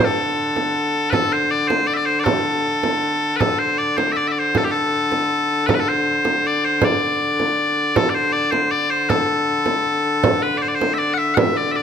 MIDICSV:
0, 0, Header, 1, 4, 480
1, 0, Start_track
1, 0, Tempo, 379507
1, 1430, Time_signature, 3, 2, 24, 8
1, 14956, End_track
2, 0, Start_track
2, 0, Title_t, "Bagpipes"
2, 0, Program_c, 0, 109
2, 56, Note_on_c, 0, 69, 66
2, 1389, Note_off_c, 0, 69, 0
2, 1389, Note_on_c, 0, 71, 87
2, 1430, Note_off_c, 0, 71, 0
2, 1430, Note_on_c, 0, 69, 87
2, 1676, Note_off_c, 0, 69, 0
2, 1676, Note_on_c, 0, 72, 86
2, 1908, Note_off_c, 0, 72, 0
2, 1908, Note_on_c, 0, 74, 93
2, 2119, Note_off_c, 0, 74, 0
2, 2119, Note_on_c, 0, 72, 81
2, 2364, Note_off_c, 0, 72, 0
2, 2364, Note_on_c, 0, 74, 96
2, 2446, Note_off_c, 0, 74, 0
2, 2446, Note_on_c, 0, 76, 72
2, 2481, Note_off_c, 0, 76, 0
2, 2481, Note_on_c, 0, 74, 90
2, 2599, Note_off_c, 0, 74, 0
2, 2599, Note_on_c, 0, 72, 86
2, 2777, Note_off_c, 0, 72, 0
2, 2777, Note_on_c, 0, 74, 67
2, 2833, Note_off_c, 0, 74, 0
2, 2834, Note_on_c, 0, 69, 67
2, 4249, Note_off_c, 0, 69, 0
2, 4249, Note_on_c, 0, 71, 71
2, 4293, Note_off_c, 0, 71, 0
2, 4293, Note_on_c, 0, 69, 71
2, 4536, Note_off_c, 0, 69, 0
2, 4536, Note_on_c, 0, 72, 81
2, 4783, Note_off_c, 0, 72, 0
2, 4783, Note_on_c, 0, 74, 87
2, 5020, Note_off_c, 0, 74, 0
2, 5020, Note_on_c, 0, 72, 78
2, 5211, Note_off_c, 0, 72, 0
2, 5211, Note_on_c, 0, 76, 84
2, 5266, Note_off_c, 0, 76, 0
2, 5266, Note_on_c, 0, 74, 84
2, 5405, Note_off_c, 0, 74, 0
2, 5405, Note_on_c, 0, 76, 61
2, 5458, Note_off_c, 0, 76, 0
2, 5458, Note_on_c, 0, 74, 61
2, 5552, Note_off_c, 0, 74, 0
2, 5552, Note_on_c, 0, 72, 84
2, 5785, Note_off_c, 0, 72, 0
2, 5785, Note_on_c, 0, 69, 74
2, 5870, Note_off_c, 0, 69, 0
2, 5870, Note_on_c, 0, 67, 62
2, 5956, Note_off_c, 0, 67, 0
2, 5956, Note_on_c, 0, 69, 75
2, 7159, Note_off_c, 0, 69, 0
2, 7159, Note_on_c, 0, 71, 75
2, 7202, Note_off_c, 0, 71, 0
2, 7202, Note_on_c, 0, 69, 75
2, 7262, Note_off_c, 0, 69, 0
2, 7262, Note_on_c, 0, 71, 66
2, 7327, Note_off_c, 0, 71, 0
2, 7327, Note_on_c, 0, 69, 88
2, 7440, Note_off_c, 0, 69, 0
2, 7440, Note_on_c, 0, 72, 85
2, 8180, Note_off_c, 0, 72, 0
2, 8180, Note_on_c, 0, 74, 92
2, 8406, Note_off_c, 0, 74, 0
2, 8406, Note_on_c, 0, 72, 83
2, 8657, Note_off_c, 0, 72, 0
2, 8657, Note_on_c, 0, 74, 82
2, 10071, Note_off_c, 0, 74, 0
2, 10071, Note_on_c, 0, 69, 81
2, 10238, Note_off_c, 0, 69, 0
2, 10238, Note_on_c, 0, 74, 62
2, 10302, Note_off_c, 0, 74, 0
2, 10302, Note_on_c, 0, 72, 89
2, 10528, Note_off_c, 0, 72, 0
2, 10528, Note_on_c, 0, 74, 96
2, 10763, Note_off_c, 0, 74, 0
2, 10763, Note_on_c, 0, 72, 82
2, 11017, Note_off_c, 0, 72, 0
2, 11017, Note_on_c, 0, 74, 92
2, 11259, Note_off_c, 0, 74, 0
2, 11259, Note_on_c, 0, 72, 84
2, 11499, Note_off_c, 0, 72, 0
2, 11499, Note_on_c, 0, 69, 69
2, 13181, Note_off_c, 0, 69, 0
2, 13181, Note_on_c, 0, 71, 71
2, 13378, Note_off_c, 0, 71, 0
2, 13378, Note_on_c, 0, 74, 73
2, 13433, Note_off_c, 0, 74, 0
2, 13433, Note_on_c, 0, 72, 73
2, 13510, Note_off_c, 0, 72, 0
2, 13510, Note_on_c, 0, 74, 60
2, 13594, Note_off_c, 0, 74, 0
2, 13594, Note_on_c, 0, 72, 79
2, 13832, Note_off_c, 0, 72, 0
2, 13832, Note_on_c, 0, 76, 82
2, 13886, Note_off_c, 0, 76, 0
2, 13886, Note_on_c, 0, 74, 82
2, 14084, Note_off_c, 0, 74, 0
2, 14084, Note_on_c, 0, 78, 86
2, 14138, Note_off_c, 0, 78, 0
2, 14138, Note_on_c, 0, 76, 86
2, 14348, Note_off_c, 0, 76, 0
2, 14348, Note_on_c, 0, 78, 80
2, 14394, Note_off_c, 0, 78, 0
2, 14394, Note_on_c, 0, 76, 80
2, 14629, Note_off_c, 0, 76, 0
2, 14629, Note_on_c, 0, 74, 81
2, 14814, Note_off_c, 0, 74, 0
2, 14814, Note_on_c, 0, 76, 74
2, 14869, Note_off_c, 0, 76, 0
2, 14869, Note_on_c, 0, 74, 74
2, 14956, Note_off_c, 0, 74, 0
2, 14956, End_track
3, 0, Start_track
3, 0, Title_t, "Hurdy-gurdy"
3, 0, Program_c, 1, 110
3, 0, Note_on_c, 1, 50, 66
3, 4310, Note_off_c, 1, 50, 0
3, 4310, Note_on_c, 1, 50, 64
3, 10055, Note_off_c, 1, 50, 0
3, 10055, Note_on_c, 1, 50, 59
3, 14956, Note_off_c, 1, 50, 0
3, 14956, End_track
4, 0, Start_track
4, 0, Title_t, "Frame drum"
4, 713, Note_on_c, 9, 64, 55
4, 839, Note_off_c, 9, 64, 0
4, 950, Note_on_c, 9, 64, 20
4, 1077, Note_off_c, 9, 64, 0
4, 1424, Note_on_c, 9, 64, 77
4, 1550, Note_off_c, 9, 64, 0
4, 2154, Note_on_c, 9, 64, 66
4, 2280, Note_off_c, 9, 64, 0
4, 2393, Note_on_c, 9, 64, 23
4, 2519, Note_off_c, 9, 64, 0
4, 2859, Note_on_c, 9, 64, 80
4, 2985, Note_off_c, 9, 64, 0
4, 3095, Note_on_c, 9, 64, 25
4, 3222, Note_off_c, 9, 64, 0
4, 3584, Note_on_c, 9, 64, 70
4, 3711, Note_off_c, 9, 64, 0
4, 3819, Note_on_c, 9, 64, 23
4, 3946, Note_off_c, 9, 64, 0
4, 4307, Note_on_c, 9, 64, 78
4, 4433, Note_off_c, 9, 64, 0
4, 5032, Note_on_c, 9, 64, 66
4, 5158, Note_off_c, 9, 64, 0
4, 5274, Note_on_c, 9, 64, 24
4, 5401, Note_off_c, 9, 64, 0
4, 5752, Note_on_c, 9, 64, 72
4, 5879, Note_off_c, 9, 64, 0
4, 6473, Note_on_c, 9, 64, 58
4, 6600, Note_off_c, 9, 64, 0
4, 6711, Note_on_c, 9, 64, 23
4, 6837, Note_off_c, 9, 64, 0
4, 7193, Note_on_c, 9, 64, 81
4, 7320, Note_off_c, 9, 64, 0
4, 7904, Note_on_c, 9, 64, 66
4, 8031, Note_off_c, 9, 64, 0
4, 8138, Note_on_c, 9, 64, 23
4, 8265, Note_off_c, 9, 64, 0
4, 8620, Note_on_c, 9, 64, 78
4, 8746, Note_off_c, 9, 64, 0
4, 9354, Note_on_c, 9, 64, 59
4, 9481, Note_off_c, 9, 64, 0
4, 10069, Note_on_c, 9, 64, 83
4, 10195, Note_off_c, 9, 64, 0
4, 10781, Note_on_c, 9, 64, 65
4, 10908, Note_off_c, 9, 64, 0
4, 11023, Note_on_c, 9, 64, 25
4, 11150, Note_off_c, 9, 64, 0
4, 11506, Note_on_c, 9, 64, 85
4, 11633, Note_off_c, 9, 64, 0
4, 12215, Note_on_c, 9, 64, 64
4, 12342, Note_off_c, 9, 64, 0
4, 12468, Note_on_c, 9, 64, 24
4, 12594, Note_off_c, 9, 64, 0
4, 12946, Note_on_c, 9, 64, 90
4, 13072, Note_off_c, 9, 64, 0
4, 13678, Note_on_c, 9, 64, 69
4, 13804, Note_off_c, 9, 64, 0
4, 13915, Note_on_c, 9, 64, 25
4, 14041, Note_off_c, 9, 64, 0
4, 14383, Note_on_c, 9, 64, 102
4, 14509, Note_off_c, 9, 64, 0
4, 14865, Note_on_c, 9, 64, 26
4, 14956, Note_off_c, 9, 64, 0
4, 14956, End_track
0, 0, End_of_file